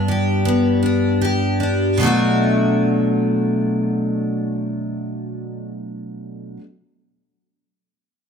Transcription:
0.00 2.01 G2 medium
0.00 0.45 B3 soft
0.00 0.82 D4 soft
0.08 1.20 G4 soft
0.45 2.01 B3 soft
0.83 1.60 D4 soft
1.21 2.04 G4 medium
1.60 2.03 D4 soft
1.98 6.56 B2 medium
1.98 6.58 F#3 medium
1.98 6.60 A3 medium
2.03 6.62 D4 medium
2.03 6.63 F#4 medium

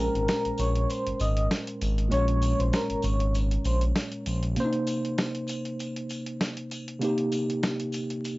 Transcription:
0.00 2.06 A#2 medium
0.00 2.07 G#3 medium
0.00 2.08 C#4 medium
0.00 0.25 A#4 medium
0.00 2.09 A#4 medium
0.00 0.26 A#5 medium
0.15 0.27 G#1 medium
0.15 closed hi-hat medium
0.28 0.56 A#4 medium
0.28 0.56 A#5 medium
0.28 snare loud
0.28 closed hi-hat medium
0.28 sleigh bells medium
0.45 0.51 A#1 medium
0.45 closed hi-hat medium
0.58 0.86 A#1 medium
0.58 0.86 C#5 medium
0.58 0.87 C#6 medium
0.58 closed hi-hat medium
0.58 sleigh bells medium
0.75 closed hi-hat medium
0.89 1.17 C5 medium
0.89 1.17 C6 medium
0.89 closed hi-hat medium
0.89 sleigh bells medium
1.07 1.12 G#1 soft
1.07 closed hi-hat medium
1.19 1.47 G#1 medium
1.19 1.48 D#5 medium
1.19 1.48 D#6 medium
1.19 closed hi-hat medium
1.19 sleigh bells medium
1.37 closed hi-hat medium
1.51 snare loud
1.51 closed hi-hat medium
1.51 sleigh bells medium
1.67 closed hi-hat medium
1.81 2.08 G#1 medium
1.81 closed hi-hat medium
1.81 sleigh bells medium
1.98 closed hi-hat medium
2.08 2.54 A#1 loud
2.08 4.51 A#2 medium
2.08 4.52 G#3 medium
2.08 4.53 C#4 medium
2.08 2.56 C#5 loud
2.08 2.57 C#6 medium
2.08 closed hi-hat medium
2.08 sleigh bells soft
2.14 4.54 C#5 medium
2.28 closed hi-hat medium
2.42 closed hi-hat medium
2.42 sleigh bells medium
2.59 2.72 A#1 medium
2.59 2.71 C5 medium
2.59 2.72 C6 medium
2.59 closed hi-hat medium
2.73 3.01 A#4 medium
2.73 3.01 A#5 medium
2.73 snare loud
2.73 closed hi-hat medium
2.73 sleigh bells medium
2.90 2.96 G#1 soft
2.90 closed hi-hat medium
3.02 3.58 G#1 medium
3.02 3.31 C#5 medium
3.02 3.32 C#6 medium
3.02 closed hi-hat medium
3.02 sleigh bells medium
3.20 closed hi-hat medium
3.34 closed hi-hat medium
3.34 sleigh bells medium
3.51 closed hi-hat medium
3.64 3.92 A#1 medium
3.64 3.81 C5 medium
3.64 3.81 C6 medium
3.64 closed hi-hat medium
3.64 sleigh bells medium
3.81 closed hi-hat medium
3.96 snare loud
3.96 closed hi-hat medium
3.96 sleigh bells medium
4.12 closed hi-hat medium
4.26 4.57 A#1 medium
4.26 closed hi-hat medium
4.26 sleigh bells medium
4.43 closed hi-hat medium
4.55 6.97 C3 medium
4.55 6.98 A#3 medium
4.55 4.65 C#4 medium
4.55 closed hi-hat medium
4.55 sleigh bells soft
4.60 6.99 C5 medium
4.65 7.01 D#4 medium
4.73 closed hi-hat medium
4.87 closed hi-hat medium
4.87 sleigh bells medium
5.05 closed hi-hat medium
5.18 snare loud
5.18 closed hi-hat medium
5.18 sleigh bells medium
5.35 closed hi-hat medium
5.47 closed hi-hat medium
5.47 sleigh bells medium
5.65 closed hi-hat medium
5.79 closed hi-hat medium
5.79 sleigh bells medium
5.96 closed hi-hat medium
6.09 closed hi-hat medium
6.09 sleigh bells medium
6.26 closed hi-hat medium
6.41 snare loud
6.41 closed hi-hat medium
6.41 sleigh bells medium
6.57 closed hi-hat medium
6.71 closed hi-hat medium
6.71 sleigh bells medium
6.88 closed hi-hat medium
6.99 8.38 C3 medium
6.99 8.38 A#3 medium
6.99 8.38 D#4 medium
6.99 closed hi-hat medium
6.99 sleigh bells soft
7.04 8.38 G4 medium
7.18 closed hi-hat medium
7.32 closed hi-hat medium
7.32 sleigh bells medium
7.50 closed hi-hat medium
7.63 snare loud
7.63 closed hi-hat medium
7.63 sleigh bells medium
7.80 closed hi-hat medium
7.92 closed hi-hat medium
7.92 sleigh bells medium
8.10 closed hi-hat medium
8.24 closed hi-hat medium
8.24 sleigh bells medium

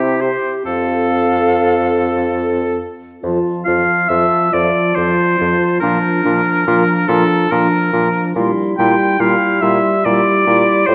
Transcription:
0.00 0.32 C3 soft
0.00 0.35 C4 soft
0.00 0.23 E4 soft
0.00 0.22 G4 soft
0.00 0.36 E5 medium
0.21 0.65 G4 soft
0.21 0.53 C5 soft
0.65 2.85 F2 soft
0.65 2.85 C4 soft
0.65 2.85 A4 soft
0.65 2.76 A4 soft
0.65 2.33 F5 medium
3.22 3.39 F2 soft
3.22 3.66 F3 soft
3.22 3.65 F4 soft
3.22 3.65 A5 soft
3.65 3.83 F2 soft
3.65 4.09 F3 soft
3.65 4.09 F4 soft
3.65 4.10 F5 medium
3.65 4.09 A5 soft
4.09 4.25 F2 soft
4.09 4.52 F3 soft
4.09 4.51 F4 soft
4.09 4.54 E5 medium
4.09 4.53 A5 soft
4.52 4.70 F2 soft
4.52 4.95 F3 soft
4.52 4.95 F4 soft
4.52 4.97 D5 medium
4.52 4.96 A5 soft
4.95 5.13 F2 soft
4.95 5.38 F3 soft
4.95 5.37 F4 soft
4.95 5.80 C5 medium
4.99 5.40 A5 soft
5.38 5.56 F2 soft
5.38 5.81 F3 soft
5.38 5.80 F4 soft
5.38 5.82 A5 soft
5.80 5.98 A#2 medium
5.80 6.24 F3 soft
5.80 6.23 D4 soft
5.80 7.10 A#4 medium
5.85 6.25 A#5 soft
6.24 6.41 A#2 soft
6.24 6.66 F3 soft
6.24 6.66 D4 soft
6.24 6.66 A#5 soft
6.66 6.83 A#2 soft
6.66 7.08 F3 soft
6.66 7.08 D4 soft
6.66 7.07 A#5 soft
7.08 7.24 A#2 soft
7.08 7.50 F3 soft
7.08 7.51 D4 soft
7.08 7.52 A4 medium
7.08 7.50 A#5 soft
7.50 7.67 A#2 soft
7.50 7.93 F3 soft
7.50 7.93 D4 soft
7.50 8.36 A#4 medium
7.50 7.90 A#5 soft
7.91 8.09 A#2 soft
7.91 8.35 F3 soft
7.91 8.35 D4 soft
7.91 8.34 A#5 soft
8.36 8.52 A#2 soft
8.36 8.78 G3 soft
8.36 8.77 E4 soft
8.36 8.78 C6 medium
8.78 8.95 A#2 medium
8.78 9.20 G3 soft
8.78 9.19 E4 soft
8.78 9.22 G5 medium
8.78 9.20 C6 soft
9.19 9.35 A#2 medium
9.19 9.62 G3 soft
9.19 9.61 E4 soft
9.19 9.63 F5 medium
9.19 9.62 C6 soft
9.62 9.78 A#2 soft
9.62 10.04 G3 medium
9.62 9.93 E4 soft
9.62 10.06 E5 medium
9.62 10.03 C6 soft
10.03 10.21 A#2 medium
10.03 10.46 G3 soft
10.03 10.46 E4 soft
10.03 10.88 D5 medium
10.03 10.27 C6 soft
10.47 10.63 A#2 medium
10.47 10.87 G3 soft
10.47 10.87 E4 medium
10.47 10.87 C6 soft
10.87 10.95 A2 medium
10.87 10.95 A3 soft
10.87 10.95 F4 soft
10.87 10.95 C5 medium
10.87 10.95 C6 medium

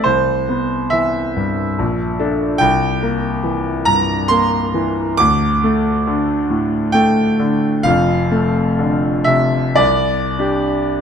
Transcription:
0.04 1.74 C2 medium
0.04 0.91 C5 medium
0.49 1.18 B3 soft
0.90 1.61 E3 soft
0.90 2.60 E5 medium
1.36 1.78 G2 soft
1.79 2.59 A#1 medium
2.19 2.57 D4 soft
2.19 2.57 A4 medium
2.58 5.15 C2 medium
2.58 3.86 G5 loud
3.03 3.70 A#3 medium
3.43 4.13 E3 medium
3.85 4.57 G2 medium
3.85 4.29 A#5 loud
4.28 5.01 A#3 medium
4.28 5.18 C6 loud
4.74 5.19 E3 medium
5.17 7.82 D2 medium
5.17 6.95 D6 loud
5.64 6.34 A3 medium
6.07 6.77 D3 medium
6.50 7.22 A2 medium
6.92 7.67 A3 medium
6.92 7.85 G5 loud
7.39 7.86 D3 medium
7.83 9.73 F1 medium
7.83 9.73 F2 medium
7.83 9.25 F5 loud
8.31 9.07 A3 medium
8.79 9.57 D3 medium
9.24 9.78 C3 medium
9.24 9.77 E5 loud
9.76 11.01 C2 medium
9.76 11.01 D5 loud
10.39 11.01 D4 soft
10.39 11.01 G4 medium

